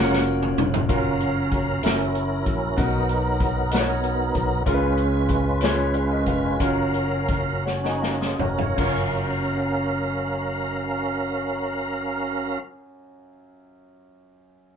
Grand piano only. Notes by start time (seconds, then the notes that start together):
Already playing: A#3 C#4 F4 F#4 A#4
0.89 C#4 F4 F#4 A#4
1.83 C#4 E4 F#4 A#4
2.77 B2 B3 D#4 F#4 A#4
3.72 B3 D#4 F#4 B4
3.80 C#5
4.66 C#3 C#4 F4 G#4 A#4
4.74 B4
5.62 C#4 F4 G#4 C#5
5.95 G#4 C#5
6.12 A#4 D#5
6.28 B4 F5
6.44 D#5 G#5
6.60 C#4 F4 F#4 A#4
7.66 C#5 F#5
7.84 D#5 G#5
8.02 F5 A#5
8.39 C#5 F#5
8.59 A#4 F5
8.74 F#2 C#4 F4
8.78 F#4 A#4